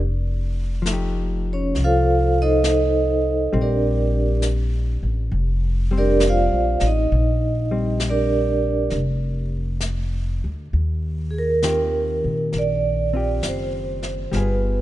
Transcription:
Already playing: F1
0.82 F3, snare, hi-hat pedal
0.87 A3 D#4
0.93 G4
1.53 C#4 C#5
1.75 C2, brush sweep, snare
1.84 F4 A4 C5 F5
2.42 D#4 A4 C5 D#5
2.64 snare, hi-hat pedal
3.52 A#1 G3 C4, brush sweep
3.61 D4 G4 A#4 D5
4.42 snare, hi-hat pedal
5.03 A1
5.31 F1, brush sweep
5.91 G3 C4
5.98 D4 G4 A#4 D5
6.20 snare, hi-hat pedal
6.29 F4 C5 D5 F5
6.52 A#1
6.80 A1, snare
6.87 D#4 D#5
7.09 A#1, brush sweep
7.71 G3 C4
8.00 snare, hi-hat pedal
8.10 D4 G4 A#4 D5
8.90 F1, brush sweep, snare
9.81 snare, hi-hat pedal
10.44 D2
10.73 D#2, brush sweep
11.31 G#4
11.38 A#4
11.63 D#3 C4 F4 G4, snare, hi-hat pedal
12.24 A#2
12.53 A#1, brush sweep, snare
12.58 D5
13.13 C4 F4 G4
13.43 F#1, snare, hi-hat pedal
13.48 C5
14.03 snare
14.32 G1 G3 B3 F4, brush sweep, snare
14.37 G#4 B4

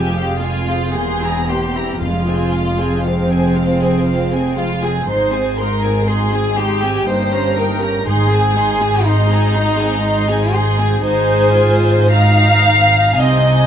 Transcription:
Already playing: F1 F2 G#3 F4 G4 G#5
0.14 C4 G#4 F5
0.38 F4
0.42 G#3 F4 G#5
0.69 C4 G#4 F5
0.94 E1 E2 A#3 G4 G#4 C6
1.22 C4 E4 A#5
1.48 A#3 G4 C6
1.76 C4 E4 A#5
2.01 F1 F2 G#3 F4 F5
2.26 C4 G#4 G#5
2.52 G#3 F4 F5
2.79 C4 G#4 G#5
3.04 G#3 C4 F4 F5
3.31 C4 G#4 G#5
3.56 G#3 F4 F5
3.82 C4 G#4 G#5
4.07 G#3 F4 F5
4.32 C4 G#4 G#5
4.56 F4 F5
4.60 G#3 F4
4.81 C4 G#4 G#5
4.86 G#4
5.08 G#1 G#2 G#3 D#4 C5 C6
5.33 C4 G#4 G#5
5.58 G#3 D#4 A#4 C6
5.82 G#4 G#5
5.86 C4
6.07 G#3 D#4 G#4 C6
6.32 C4 G#4 G#5
6.57 G#3 D#4 G4 C6
6.83 C4 G#4 G#5
7.07 G1 G2 A#3 D#4 C5 G5
7.33 C#4 G4 A#5
7.56 A#3 D#4 A#4 G5
7.82 C#4 G4 A#5
8.07 G#1 G#2 G#3 D#4 G#4 C6
8.30 C4 G#4 G#5
8.56 G#3 D#4 C6
8.81 C4 G#4 G#5
9.05 G#3 D#4 C6
9.30 C4 G#4 G#5
9.56 G#3 D#4 C6
9.79 C4 G#4 G#5
10.04 G#3 D#4 C6
10.29 C4 G#4 G#5
10.54 G#3 D#4 G#4 C6
10.78 C4 G#4 G#5
11.03 G#1 G#2 D#4 G#4 C5 G#5
11.57 F4
12.12 D#4 F5 A#5
13.15 C2 C3 C4 D#4 D#5 G#5

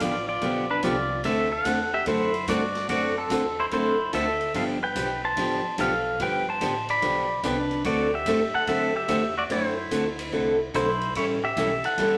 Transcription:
0.00 A1 D3 F3 B3 D4 F4 G4 D5, kick, hi-hat pedal, ride
0.29 F4 D5
0.41 B1 D3 F3 B3 D4 G4, kick, ride
0.71 D4 B4
0.83 C2 D3 F3 B3 D4 F4 G4 D5, kick, hi-hat pedal, ride
1.24 D2 D3 A3 C4 F#4 A4 E5, kick, ride
1.52 A4 F#5
1.65 E2 D3 A3 C4 F#4 A4, kick, hi-hat pedal, ride
1.94 G4 E5
2.06 F#2 D3 A3 C4 E4 F#4 A4 C5, kick, ride
2.34 ride
2.47 G2 D3 A3 C4 F#4 A4 D5, kick, hi-hat pedal, ride
2.75 snare, ride
2.89 F#2 D3 A3 C4 F#4 A4 D5, kick, ride
3.18 C4 A4
3.30 E2 D3 A3 C4 F#4 A4, kick, hi-hat pedal, ride
3.60 E4 C5
3.71 F#2 D3 A3 C4 E4 F#4 A4 C5, kick, ride
4.13 D2 D3 A3 C4 F#4 A4 E5, kick, hi-hat pedal, ride
4.41 ride
4.54 G1 D3 F3 B3 D4 G4 A4 F5, kick, ride
4.83 B4 G5
4.95 B1 D3 F3 B3 D4 G4, kick, hi-hat pedal, ride
5.25 C5 A5
5.37 A1 D3 F3 B3 D4 G4, kick, ride
5.64 muted upright bass stroke
5.78 B1 D3 F3 B3 D4 G4 A4 F5, kick, hi-hat pedal, ride
6.19 G1 D3 F3 B3 D4 G4 B4 G5, kick, ride
6.49 C5 A5
6.61 A1 D3 F3 B3 D4 G4, kick, hi-hat pedal, ride
6.89 D5 B5, ride
7.02 B1 D3 F3 B3 D4 G4, kick, ride
7.43 C2 D3 F3 B3 D4 G4 B4, kick, hi-hat pedal, ride
7.71 ride
7.84 D2 D3 A3 C4 F#4 A4 D5, kick, ride
8.14 G4 E5
8.26 G2 D3 A3 C4 F#4 A4, kick, hi-hat pedal, ride
8.54 A4 F#5, muted upright bass stroke
8.67 F#2 D3 A3 C4 F#4 A4 E5, kick, ride
8.96 G4 E5
9.08 E2 D3 A3 C4 F#4 A4, kick, hi-hat pedal, ride
9.38 F#4 D5
9.50 F#2 D3 A3 C4 E4 F#4 A4 C5, kick, ride
9.91 D2 D3 A3 C4 F#4 A4, kick, hi-hat pedal, ride
10.19 ride
10.32 C2 D3 A3 C4 F#4 A4, kick
10.74 B1 D3 A3 C4 E4 F#4 A4 C5, kick, hi-hat pedal, ride
11.01 ride
11.15 A1 E3 G3 C#4 E4 A4 C#5, kick, ride
11.44 G4 E5
11.56 B1 E3 G3 C#4 E4 A4, kick, hi-hat pedal, ride
11.84 A4 F#5, muted upright bass stroke, ride
11.98 G1 E3 G3 C#4 E4 A4, kick, ride

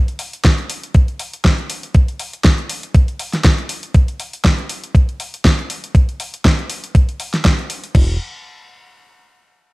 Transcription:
0.08 closed hi-hat
0.19 open hi-hat
0.33 closed hi-hat
0.44 kick, snare, closed hi-hat
0.58 closed hi-hat
0.70 open hi-hat
0.83 closed hi-hat
0.94 kick, closed hi-hat
1.08 closed hi-hat
1.20 open hi-hat
1.34 closed hi-hat
1.45 kick, snare, closed hi-hat
1.58 closed hi-hat
1.70 open hi-hat
1.83 closed hi-hat
1.94 kick, closed hi-hat
2.08 closed hi-hat
2.20 open hi-hat
2.33 closed hi-hat
2.44 kick, snare, closed hi-hat
2.58 closed hi-hat
2.70 open hi-hat
2.83 closed hi-hat
2.95 kick, closed hi-hat
3.08 closed hi-hat
3.19 open hi-hat
3.33 snare, closed hi-hat
3.44 kick, snare, closed hi-hat
3.58 closed hi-hat
3.69 open hi-hat
3.83 closed hi-hat
3.94 kick, closed hi-hat
4.08 closed hi-hat
4.20 open hi-hat
4.33 closed hi-hat
4.45 kick, snare, closed hi-hat
4.58 closed hi-hat
4.69 open hi-hat
4.84 closed hi-hat
4.95 kick, closed hi-hat
5.09 closed hi-hat
5.20 open hi-hat
5.34 closed hi-hat
5.45 kick, snare, closed hi-hat
5.59 closed hi-hat
5.70 open hi-hat
5.84 closed hi-hat
5.95 kick, closed hi-hat
6.09 closed hi-hat
6.20 open hi-hat
6.34 closed hi-hat
6.45 kick, snare, closed hi-hat
6.59 closed hi-hat
6.70 open hi-hat
6.84 closed hi-hat
6.95 kick, closed hi-hat
7.09 closed hi-hat
7.20 open hi-hat
7.34 snare, closed hi-hat
7.45 kick, snare, closed hi-hat
7.59 closed hi-hat
7.70 open hi-hat
7.84 closed hi-hat
7.95 E1, kick, crash

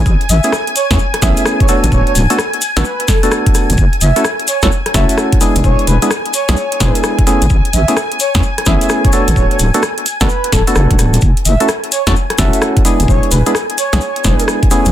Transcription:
Already playing: G#5
0.06 A1, kick, shaker
0.21 closed hi-hat
0.29 A1 E5, closed hi-hat, shaker
0.43 A3 B3 C#4 E4 G#4, closed hi-hat, shaker
0.52 cross-stick, shaker
0.67 closed hi-hat
0.76 C#5, closed hi-hat, shaker
0.91 E2 A3 B3 C#4 E4 G#4 C#5, kick, snare, closed hi-hat, shaker
0.99 shaker
1.14 cross-stick, closed hi-hat
1.22 A1 A3 B3 C#4 E4 G#4 E5, kick, snare, closed hi-hat, shaker
1.37 E5, closed hi-hat, shaker
1.45 cross-stick, shaker
1.60 C#5, kick, closed hi-hat
1.68 A3 B3 D4 F#4 A4 C#5, closed hi-hat, shaker
1.83 A1, closed hi-hat, shaker
1.92 D1 C#5, kick, shaker
2.07 C#5, closed hi-hat
2.15 D1, closed hi-hat, shaker
2.30 A3 B3 D4 F#4 A4, closed hi-hat, shaker
2.39 cross-stick, shaker
2.54 closed hi-hat
2.61 closed hi-hat, shaker
2.77 A1 A3 B3 D4 F#4 A4 B4, snare, closed hi-hat, shaker
2.85 shaker
3.00 closed hi-hat
3.08 A4, kick, snare, closed hi-hat, shaker
3.23 A3 B3 D4 F#4 A4, closed hi-hat, shaker
3.32 cross-stick, shaker
3.46 kick, closed hi-hat
3.55 cross-stick, closed hi-hat, shaker
3.70 F#1, closed hi-hat, shaker
3.77 F#1 G#5, kick, shaker
3.93 closed hi-hat
4.01 F#1 E5, closed hi-hat, shaker
4.16 A3 C#4 E4 F#4 A4, closed hi-hat, shaker
4.25 cross-stick, shaker
4.40 closed hi-hat
4.48 C#5, closed hi-hat, shaker
4.62 C#2 A3 C#4 E4 F#4 A4 C#5, kick, snare, closed hi-hat, shaker
4.72 shaker
4.86 cross-stick, closed hi-hat
4.94 F#1 A3 C#4 E4 F#4 A4 E5, kick, snare, closed hi-hat, shaker
5.09 E5, closed hi-hat, shaker
5.18 cross-stick, shaker
5.32 kick, closed hi-hat
5.41 G#3 B3 D4 E4 G#4, closed hi-hat, shaker
5.56 F#1, closed hi-hat, shaker
5.64 E1 C#5, kick, shaker
5.79 closed hi-hat
5.87 E1 B4, closed hi-hat, shaker
6.02 G#3 B3 D4 E4 G#4 B4, closed hi-hat, shaker
6.11 cross-stick, shaker
6.26 closed hi-hat
6.34 C#5, closed hi-hat, shaker
6.49 B1 G#3 B3 D4 E4 G#4, snare, closed hi-hat, shaker
6.57 shaker
6.72 closed hi-hat
6.80 E1 G#3 B3 D4 E4 G#4, kick, snare, closed hi-hat, shaker
6.95 closed hi-hat, shaker
7.03 cross-stick, shaker
7.19 kick, closed hi-hat
7.27 A3 B3 C#4 E4 G#4, closed hi-hat, shaker
7.42 A1, closed hi-hat, shaker
7.50 A1, kick, shaker
7.65 closed hi-hat
7.73 A1 E5, closed hi-hat, shaker
7.88 A3 B3 C#4 E4 G#4, closed hi-hat, shaker
7.97 cross-stick, shaker
8.12 closed hi-hat
8.20 C#5, closed hi-hat, shaker
8.35 E2 A3 B3 C#4 E4 G#4 C#5, kick, snare, closed hi-hat, shaker
8.43 shaker
8.58 cross-stick, closed hi-hat
8.66 A1 A3 B3 C#4 E4 G#4 E5, kick, snare, closed hi-hat, shaker
8.81 E5, closed hi-hat, shaker
8.89 cross-stick, shaker
9.04 C#5, kick, closed hi-hat
9.13 A3 B3 D4 F#4 A4 C#5, closed hi-hat, shaker
9.28 A1, closed hi-hat, shaker
9.36 D1 C#5, kick, shaker
9.51 C#5, closed hi-hat
9.59 D1, closed hi-hat, shaker
9.74 A3 B3 D4 F#4 A4, closed hi-hat, shaker
9.83 cross-stick, shaker
9.98 closed hi-hat
10.06 closed hi-hat, shaker
10.21 A1 A3 B3 D4 F#4 A4 B4, kick, snare, closed hi-hat, shaker
10.29 shaker
10.44 closed hi-hat
10.52 D1 A4, kick, snare, closed hi-hat, shaker
10.67 A3 B3 D4 F#4 A4, closed hi-hat, shaker
10.75 F#1, cross-stick, shaker
10.91 F#1, kick, closed hi-hat
10.99 D1, cross-stick, closed hi-hat, shaker
11.14 closed hi-hat, shaker
11.21 F#1 G#5, kick, shaker
11.37 closed hi-hat
11.45 F#1 E5, closed hi-hat, shaker
11.60 A3 C#4 E4 F#4 A4, closed hi-hat, shaker
11.68 cross-stick, shaker
11.84 closed hi-hat
11.92 C#5, closed hi-hat, shaker
12.07 C#2 A3 C#4 E4 F#4 A4 C#5, kick, snare, closed hi-hat, shaker
12.16 shaker
12.30 cross-stick, closed hi-hat
12.38 F#1 A3 C#4 E4 F#4 A4 E5, kick, snare, closed hi-hat, shaker
12.53 E5, closed hi-hat, shaker
12.62 cross-stick, shaker
12.77 kick, closed hi-hat
12.85 G#3 B3 D4 E4 G#4, closed hi-hat, shaker
13.00 F#1, closed hi-hat, shaker
13.08 E1 C#5, kick, shaker
13.23 closed hi-hat
13.31 E1 B4, closed hi-hat, shaker
13.46 G#3 B3 D4 E4 G#4 B4, closed hi-hat, shaker
13.55 cross-stick, shaker
13.70 closed hi-hat
13.78 C#5, closed hi-hat, shaker
13.93 B1 G#3 B3 D4 E4 G#4, snare, closed hi-hat, shaker
14.01 shaker
14.16 closed hi-hat
14.24 E1 G#3 B3 D4 E4 G#4, kick, snare, closed hi-hat, shaker
14.39 closed hi-hat, shaker
14.48 cross-stick, shaker
14.63 kick, closed hi-hat
14.71 A3 B3 C#4 E4 G#4, closed hi-hat, shaker
14.86 A1, closed hi-hat, shaker

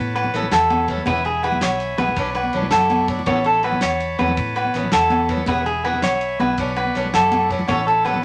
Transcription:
Already playing: A2 B4 C#5 A5 B5
0.16 B4, ride, low agogo
0.24 high conga
0.34 A1 E3 B3 C#4 A4, snare, ride
0.42 low conga
0.52 E2 A4, snare, ride, low agogo
0.70 ride, high conga, low agogo
0.79 low conga
0.88 E3 B3 C#4 A4, kick, ride
0.97 low conga
1.06 E1 B3 E4 G#4 B4 G#5, kick, ride, high conga, low agogo
1.10 E5
1.25 G#4, ride
1.43 E4 G#4 B4, ride, low agogo
1.52 high conga, low conga
1.61 B1 C#5, snare, ride, low agogo
1.80 ride
1.98 A#1 B3 E4 G#4 B4, ride, high conga, low agogo
2.08 low conga
2.16 B1 F#3 C#4 D4 D5 C#6, kick, ride
2.27 low conga
2.35 B4, ride, low agogo
2.44 high conga
2.53 B1 F#3 C#4 D4, ride
2.62 low conga
2.71 F#2 A4, snare, ride, low agogo
2.81 low conga
2.90 ride, high conga, low agogo
3.08 F#3 D4, kick, ride, low conga
3.19 low conga
3.26 A1 E3 B3 C#4 A4 C#5 A5 B5, kick, ride, high conga, low agogo
3.44 A4, ride
3.63 E3 B3 C#4 B4, ride, low agogo
3.68 A4
3.72 high conga, low conga
3.81 E2 C#5, snare, ride, low agogo
4.00 ride
4.19 E2 E3 B3 C#4 A4 B4, ride, high conga, low agogo
4.28 low conga
4.37 A2, kick, ride, low conga
4.56 B4, ride, low agogo
4.64 high conga
4.74 A1 E3 B3 C#4, snare, ride
4.84 low conga
4.92 E2 A4, snare, ride, low agogo
5.10 ride, high conga, low agogo
5.19 low conga
5.29 E3 B3 C#4 A4, kick, ride
5.37 low conga
5.46 E1 B3 G#4 B4 E5 G#5, muted steel-string acoustic guitar stroke, kick, ride, high conga, low agogo
5.66 G#4, ride
5.84 B3 E4 G#4 B4, ride, low agogo
5.93 high conga
6.02 B1 C#5, snare, ride, low agogo
6.21 ride
6.40 B1 E4 G#4 B4, ride, high conga, low agogo
6.57 B1 C#4 D4 D5 C#6, muted steel-string acoustic guitar stroke, kick, ride, low conga
6.76 B4, ride, low agogo
6.85 high conga
6.95 B1 F#3 C#4 D4, snare, ride
7.05 low conga
7.14 F#2 A4, snare, ride, low agogo
7.32 ride, high conga, low agogo
7.42 low conga
7.49 F#3 C#4 D4, kick, ride
7.59 low conga
7.68 A1 E3 B3 C#4 A4 C#5 A5, kick, ride, high conga, low agogo
7.87 A4, ride
8.04 B3 C#4 A4 B4, muted steel-string acoustic guitar stroke, ride, low agogo
8.14 high conga, low conga

